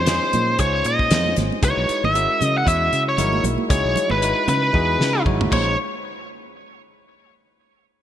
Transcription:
Already playing: F2 C5
0.07 G#3 C#4 D#4 F4 G#4, snare, closed hi-hat
0.33 A#2, closed hi-hat, low conga
0.59 C#2 G#3 C#4 D#4 F4 C5 C#5, kick, closed hi-hat
0.84 A#2 D#5, closed hi-hat
0.99 kick
1.11 F2 G#3 C#4 D#4 F4 C5, snare, closed hi-hat, low conga
1.26 high conga
1.36 G#1, snare, closed hi-hat, high conga, low conga
1.52 muted fingered electric bass stroke, high conga
1.62 C#2 G#3 D#4 E4 F#4 B4 C#5, kick, closed hi-hat
1.77 B1
1.89 closed hi-hat
2.04 G#1 E5, high conga
2.14 G#3 C#4 E4 F#4 A#4, closed hi-hat
2.41 C#3 D#5, closed hi-hat, low conga
2.58 F#5
2.65 E2 G#3 C#4 E4 F#4 C#5 E5, kick, closed hi-hat
2.93 C#3, closed hi-hat
3.09 C#5
3.18 G#1 G#3 D#4 E4 F#4 A#4, closed hi-hat, low conga
3.33 high conga
3.44 B1, closed hi-hat, high conga, low conga
3.58 high conga
3.69 C#2 G#3 D#4 E4 F#4 G#4 C#5, kick, closed hi-hat
3.84 B1
3.96 closed hi-hat, low conga
4.10 G#1 B4, high conga
4.21 G#3 D#4 E4 F#4 B4, closed hi-hat
4.48 C#3 B4, closed hi-hat, high conga, low conga
4.73 E2 G#3 D#4 E4 F#4 G#4, kick
4.99 C#3, snare
5.25 G#1 G#3 D#4 E4 F#4 C#5, kick, low conga
5.41 mid tom, high conga
5.50 A#1 G#3 C#4 D#4 F4 C5 C#5, kick, crash, high conga

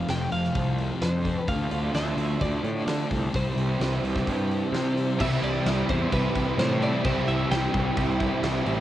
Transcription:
Already playing: F2 C3 F3 A3 C4 F4 A4
0.08 F1 F2 C3 F3 G5, snare, open hi-hat
0.32 F1 C4 F5, open hi-hat
0.44 snare
0.53 C2 F2 C3 F3 A4, kick, open hi-hat
0.78 open hi-hat
1.00 F2 C3 F3 C4 C5, snare, open hi-hat
1.25 A4, kick, open hi-hat
1.38 B4
1.46 D2 D3 F3 A3 D4 F4 F5, kick, open hi-hat
1.71 D2 C4, open hi-hat
1.93 D2 D3 F3 A3 D4 E5, snare, open hi-hat
2.17 D2 C4, open hi-hat
2.40 D2 D3 A3 D4 A4 D5, kick, open hi-hat
2.64 A2, open hi-hat
2.86 D3 A3 C4 D4, snare, open hi-hat
3.10 C2 A4, kick, open hi-hat
3.33 C2 C3 E3 G3 C4 E4 C5, kick, open hi-hat
3.56 C2 G3, open hi-hat
3.79 C2 C3 G3 C4, snare, open hi-hat
4.03 C2 G3, open hi-hat
4.16 kick, snare
4.26 G2 C3 G3 C4 E4, kick, open hi-hat
4.51 open hi-hat
4.71 C3 G3 C4, snare, open hi-hat
4.96 E4, open hi-hat
5.19 C2 C3 E3 G3 C4 E4 E5 B5, kick, crash
5.42 C2 G3 C4 D5, crash
5.65 C2 C3 G3 C4, snare, crash
5.88 E2 G3 C4 E4 C5, kick, crash
6.11 C2 C3 E3 G3 C4 E4 B4, kick, crash
6.35 C2 G3, kick, crash
6.57 A2 C3 G3 C4 C5, snare, crash
6.81 C3 E3 G3 C4 E4 D5, crash
7.03 C2 C3 E3 G3 C4 E4 C5, kick, crash
7.27 C2 G3 C4 E5, crash
7.50 C2 C3 G3 C4 G5, snare, crash
7.72 C2 G3 C4 E4, kick, crash
7.97 C2 C3 E3 G3 C4 E4, kick, crash
8.20 G3, kick, crash
8.43 C2 C3 G3 C4, snare, crash
8.64 A1 E3 G3 C4 E4, crash
8.68 C3

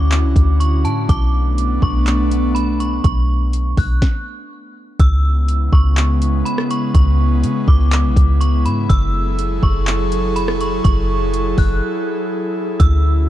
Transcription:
Already playing: D2 D3 C#4 E4 F#4 D6
0.12 clap, closed hi-hat
0.24 C#2
0.36 D2, kick, closed hi-hat
0.60 C#6, closed hi-hat
0.85 A2 A5, closed hi-hat
1.09 B1 A3 B3 D4 D6, kick, closed hi-hat
1.58 closed hi-hat
1.82 B1 C#6, kick
2.07 clap, closed hi-hat
2.31 closed hi-hat
2.55 B5, closed hi-hat
2.80 C#6, closed hi-hat
3.04 B1 C#6, kick, closed hi-hat
3.53 closed hi-hat
3.77 B1 F#6, kick, open hi-hat
4.02 kick, snare
5.00 C#2 C#3 G#3 B3 E4 E6, kick, closed hi-hat
5.48 closed hi-hat
5.73 C#2 C#6, kick
5.97 clap, closed hi-hat
6.22 closed hi-hat
6.45 B5, closed hi-hat
6.58 cross-stick
6.71 C#6, closed hi-hat
6.94 C#2 C#6, kick, closed hi-hat
7.43 C#3, closed hi-hat
7.68 C#2 D6, kick
7.92 clap, closed hi-hat
8.04 B1
8.16 C#2, kick, closed hi-hat
8.41 C#6, closed hi-hat
8.65 G#2 B5, closed hi-hat
8.89 F#1 F#3 G#4 A4 E6, kick, closed hi-hat
9.39 closed hi-hat
9.63 F#1 C#6, kick
9.87 clap, closed hi-hat
10.12 closed hi-hat
10.36 B5, closed hi-hat
10.48 cross-stick
10.61 C#6, closed hi-hat
10.84 F#1 C#6, kick, closed hi-hat
11.34 closed hi-hat
11.58 F#1 F#6, kick, open hi-hat
12.80 D2 D3 C#4 F#4 E6, kick, closed hi-hat

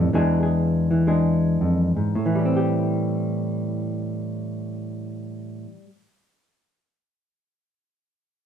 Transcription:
Already playing: A2 E3 G3 C4 G4
0.00 F2
0.13 E2 E3 G#3 D4 G#4
0.43 G#4
0.91 E3
1.07 G#3 D4 G#4
1.61 F2
1.96 G#2
2.15 A2
2.26 E3
2.35 G3
2.45 C4
2.56 G4

